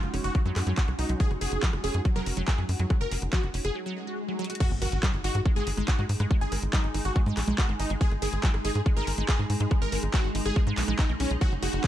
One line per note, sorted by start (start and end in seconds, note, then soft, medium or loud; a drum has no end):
0.00 0.09 F#1 medium
0.00 3.75 G#3 medium
0.00 3.75 C#4 medium
0.00 3.75 D#4 medium
0.00 3.75 F#4 medium
0.00 3.75 F#5 medium
0.00 closed hi-hat soft
0.14 0.20 F#1 loud
0.14 0.21 C#4 medium
0.14 cross-stick soft
0.14 open hi-hat medium
0.24 0.31 F#1 medium
0.24 0.40 F#4 medium
0.24 closed hi-hat medium
0.35 0.44 F#3 medium
0.35 kick loud
0.35 closed hi-hat medium
0.46 0.52 F#2 medium
0.46 0.53 F#3 loud
0.46 closed hi-hat soft
0.56 0.63 F#2 loud
0.56 cross-stick medium
0.56 clap medium
0.56 open hi-hat loud
0.67 0.73 F#2 medium
0.67 0.71 F#3 loud
0.67 closed hi-hat medium
0.77 0.88 F#4 medium
0.77 kick loud
0.77 clap loud
0.77 closed hi-hat medium
0.88 0.94 C2 medium
0.88 0.95 F#3 medium
0.88 cross-stick soft
0.88 closed hi-hat soft
0.99 1.05 C2 loud
0.99 1.09 D#4 medium
0.99 open hi-hat medium
1.09 1.16 C2 medium
1.09 1.19 F#3 medium
1.09 closed hi-hat medium
1.20 1.30 F#3 medium
1.20 1.31 G#4 loud
1.20 kick loud
1.20 closed hi-hat medium
1.31 1.37 F#1 medium
1.31 cross-stick soft
1.31 closed hi-hat soft
1.41 1.48 F#1 loud
1.41 1.62 G#4 medium
1.41 1.45 G#4 medium
1.41 open hi-hat loud
1.52 1.58 F#1 medium
1.52 closed hi-hat medium
1.63 1.70 F3 loud
1.63 kick loud
1.63 clap loud
1.63 closed hi-hat medium
1.73 1.80 F#1 medium
1.73 cross-stick medium
1.73 closed hi-hat soft
1.84 1.90 F#1 loud
1.84 1.91 C#4 medium
1.84 2.00 G#4 loud
1.84 open hi-hat medium
1.94 2.01 F#2 medium
1.94 closed hi-hat medium
2.05 2.15 F#3 medium
2.05 kick loud
2.05 cross-stick soft
2.05 closed hi-hat medium
2.16 2.22 F#1 medium
2.16 2.23 F#3 loud
2.16 2.32 A#4 medium
2.16 closed hi-hat soft
2.26 2.33 F#1 loud
2.26 open hi-hat loud
2.37 2.43 F#1 medium
2.37 2.41 F#3 loud
2.37 closed hi-hat medium
2.48 2.63 G#4 loud
2.48 kick loud
2.48 cross-stick soft
2.48 clap loud
2.48 closed hi-hat medium
2.58 2.65 F#2 medium
2.58 2.65 F#3 medium
2.58 closed hi-hat soft
2.69 2.75 F#2 loud
2.69 open hi-hat medium
2.80 2.86 F#2 medium
2.80 2.89 F#3 medium
2.80 closed hi-hat medium
2.90 3.00 F#3 medium
2.90 kick loud
2.90 cross-stick medium
2.90 closed hi-hat medium
3.01 3.07 F#1 medium
3.01 3.17 A#4 loud
3.01 closed hi-hat soft
3.11 3.18 F#1 loud
3.11 3.16 G#4 medium
3.11 open hi-hat loud
3.22 3.28 F#1 medium
3.22 cross-stick soft
3.22 closed hi-hat medium
3.33 3.40 F3 loud
3.33 3.49 F#4 loud
3.33 kick loud
3.33 clap loud
3.33 closed hi-hat medium
3.43 3.50 F#1 medium
3.43 closed hi-hat soft
3.54 3.60 F#1 loud
3.54 3.61 C#4 medium
3.54 open hi-hat medium
3.65 3.71 F#1 loud
3.65 3.75 G#4 medium
3.65 cross-stick soft
3.65 closed hi-hat medium
3.75 3.85 F#3 medium
3.75 swell medium
3.86 3.93 F#3 loud
4.07 4.17 F#4 medium
4.29 4.38 F#3 medium
4.39 4.43 F#3 loud
4.39 closed hi-hat medium
4.44 closed hi-hat medium
4.50 4.57 F#4 medium
4.50 closed hi-hat medium
4.55 closed hi-hat medium
4.60 4.71 G#3 medium
4.60 11.87 G#3 medium
4.60 11.87 D#4 medium
4.60 4.71 F#4 loud
4.60 kick loud
4.60 cross-stick soft
4.60 closed hi-hat medium
4.60 crash loud
4.60 impact medium
4.71 4.77 G#1 medium
4.71 closed hi-hat soft
4.82 4.88 G#1 loud
4.82 5.03 F#4 medium
4.82 4.86 A#4 medium
4.82 open hi-hat loud
4.92 4.99 G#1 medium
4.92 closed hi-hat medium
4.99 11.87 G#4 medium
5.03 5.10 F#3 loud
5.03 kick loud
5.03 cross-stick medium
5.03 clap loud
5.03 closed hi-hat medium
5.14 5.20 G#1 medium
5.14 closed hi-hat soft
5.24 5.31 G#1 loud
5.24 5.31 D#4 medium
5.24 5.40 F#4 loud
5.24 open hi-hat loud
5.35 5.41 G#2 medium
5.35 cross-stick soft
5.35 closed hi-hat medium
5.46 5.55 G#3 medium
5.46 kick loud
5.46 closed hi-hat medium
5.56 5.63 G#1 medium
5.56 5.63 G#3 loud
5.56 5.72 G#4 loud
5.56 closed hi-hat soft
5.67 5.73 G#1 loud
5.67 open hi-hat loud
5.77 5.84 G#1 medium
5.77 5.82 G#3 loud
5.77 cross-stick soft
5.77 closed hi-hat medium
5.88 6.04 F#4 medium
5.88 kick loud
5.88 clap loud
5.88 closed hi-hat medium
5.99 6.05 G#2 medium
5.99 6.06 G#3 medium
5.99 closed hi-hat soft
6.09 6.16 G#2 loud
6.09 11.87 G#5 medium
6.09 open hi-hat medium
6.20 6.26 G#2 loud
6.20 6.29 G#3 medium
6.20 cross-stick medium
6.20 closed hi-hat medium
6.31 6.41 G#3 medium
6.31 kick loud
6.31 closed hi-hat medium
6.41 6.48 G#1 medium
6.41 6.57 G#4 medium
6.41 closed hi-hat soft
6.52 6.58 G#1 loud
6.52 6.56 A#4 medium
6.52 cross-stick soft
6.52 open hi-hat loud
6.63 6.69 G#1 medium
6.63 closed hi-hat medium
6.73 6.80 F#3 loud
6.73 6.89 D#4 loud
6.73 kick loud
6.73 clap loud
6.73 closed hi-hat medium
6.84 6.90 G#1 medium
6.84 closed hi-hat soft
6.94 7.01 G#1 loud
6.94 7.01 D#4 medium
6.94 cross-stick soft
6.94 open hi-hat loud
7.05 7.11 G#1 loud
7.05 7.21 F#4 medium
7.05 closed hi-hat medium
7.16 7.25 G#3 medium
7.16 kick loud
7.16 closed hi-hat medium
7.26 7.33 G#2 medium
7.26 7.33 G#3 loud
7.26 closed hi-hat soft
7.37 7.43 A#1 loud
7.37 cross-stick medium
7.37 clap medium
7.37 open hi-hat loud
7.48 7.54 B1 medium
7.48 7.52 G#3 loud
7.48 closed hi-hat medium
7.58 7.69 F#4 medium
7.58 kick loud
7.58 clap loud
7.58 closed hi-hat medium
7.69 7.75 G#1 medium
7.69 7.76 G#3 medium
7.69 cross-stick soft
7.69 closed hi-hat soft
7.80 7.86 G#1 loud
7.80 7.90 D#4 medium
7.80 open hi-hat medium
7.90 7.97 G#1 medium
7.90 8.00 G#3 medium
7.90 closed hi-hat medium
8.01 8.11 G#3 medium
8.01 8.11 G#4 loud
8.01 kick loud
8.01 closed hi-hat medium
8.11 8.18 G#1 medium
8.11 cross-stick soft
8.11 closed hi-hat soft
8.22 8.28 G#1 loud
8.22 8.43 G#4 medium
8.22 8.26 A#4 medium
8.22 open hi-hat loud
8.33 8.39 G#1 medium
8.33 closed hi-hat medium
8.43 8.50 F#3 loud
8.43 kick loud
8.43 clap loud
8.43 closed hi-hat medium
8.54 8.60 G#1 medium
8.54 cross-stick medium
8.54 closed hi-hat soft
8.65 8.71 G#1 loud
8.65 8.72 D#4 medium
8.65 8.80 G#4 loud
8.65 open hi-hat loud
8.75 8.82 G#2 medium
8.75 closed hi-hat medium
8.86 8.95 G#3 medium
8.86 kick loud
8.86 cross-stick soft
8.86 closed hi-hat medium
8.97 9.03 G#1 medium
8.97 9.04 G#3 loud
8.97 9.12 A#4 medium
8.97 closed hi-hat soft
9.07 9.14 G#1 loud
9.07 open hi-hat loud
9.18 9.24 G#1 medium
9.18 9.22 G#3 loud
9.18 closed hi-hat medium
9.29 9.44 G#4 medium
9.29 kick loud
9.29 cross-stick soft
9.29 clap loud
9.29 closed hi-hat medium
9.39 9.45 G#2 medium
9.39 9.46 G#3 medium
9.39 closed hi-hat soft
9.50 9.56 G#2 loud
9.50 open hi-hat medium
9.60 9.67 G#2 medium
9.60 9.70 G#3 medium
9.60 closed hi-hat medium
9.71 9.81 G#3 medium
9.71 kick loud
9.71 cross-stick medium
9.71 closed hi-hat medium
9.82 9.88 G#1 medium
9.82 9.97 A#4 loud
9.82 closed hi-hat soft
9.92 9.99 G#1 loud
9.92 9.97 A#4 medium
9.92 open hi-hat loud
10.03 10.09 G#1 medium
10.03 cross-stick soft
10.03 closed hi-hat medium
10.14 10.21 F#3 loud
10.14 10.29 F#4 loud
10.14 kick loud
10.14 clap loud
10.14 closed hi-hat medium
10.24 10.31 G#1 medium
10.24 closed hi-hat soft
10.35 10.41 G#1 loud
10.35 10.42 D#4 medium
10.35 open hi-hat loud
10.46 10.52 G#1 loud
10.46 10.61 G#4 medium
10.46 cross-stick soft
10.46 closed hi-hat medium
10.56 10.66 G#3 medium
10.56 kick loud
10.56 closed hi-hat soft
10.67 10.73 G#2 medium
10.67 10.74 G#3 loud
10.67 closed hi-hat soft
10.77 10.84 B1 loud
10.77 10.82 B3 medium
10.77 clap medium
10.77 open hi-hat loud
10.88 10.94 A#1 medium
10.88 10.92 G#3 loud
10.88 cross-stick medium
10.88 closed hi-hat medium
10.99 11.09 D#4 medium
10.99 kick loud
10.99 clap loud
10.99 closed hi-hat medium
11.09 11.16 B1 medium
11.09 11.16 A#3 medium
11.09 closed hi-hat soft
11.20 11.26 B1 loud
11.20 11.31 C#4 medium
11.20 cross-stick soft
11.20 open hi-hat medium
11.31 11.37 B1 medium
11.31 11.38 G#4 medium
11.31 closed hi-hat medium
11.41 11.51 F#3 medium
11.41 11.87 C#4 medium
11.41 11.52 F#4 loud
11.41 kick loud
11.41 cross-stick soft
11.41 closed hi-hat medium
11.52 11.58 F#1 medium
11.52 closed hi-hat soft
11.63 11.69 F#1 loud
11.63 11.84 F#4 medium
11.63 11.67 G#4 medium
11.63 open hi-hat loud
11.72 11.80 F#1 medium
11.72 11.87 F#4 medium
11.72 closed hi-hat medium
11.84 11.87 F3 loud
11.84 kick loud
11.84 cross-stick medium
11.84 clap loud
11.84 closed hi-hat medium